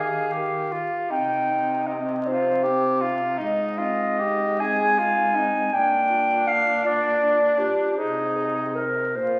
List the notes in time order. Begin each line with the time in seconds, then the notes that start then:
Already playing: D#3 G4 G#4 F5
0.33 G4 A#4
0.72 F4 G4
1.11 C3 C4 D#4 G5
1.50 D#4
1.87 C4 D#5
2.26 D#4 F4 C5
2.63 C4 G4
3.01 D#4 F4
3.38 G#2 D#4 D#5
3.78 C4 F4
4.19 D#4 G4
4.60 C4 G#4 G#5
4.99 D#4 F4
5.36 C4 D#4
5.72 A#2 D4 G5
6.10 F4
6.47 D4 F5
6.85 F4 D5
7.22 D4
7.58 F4 G4
7.97 C3 D#4 G#4 C5
8.37 G#4
8.75 A#4 C5
9.15 A#2 F4 A#4 C5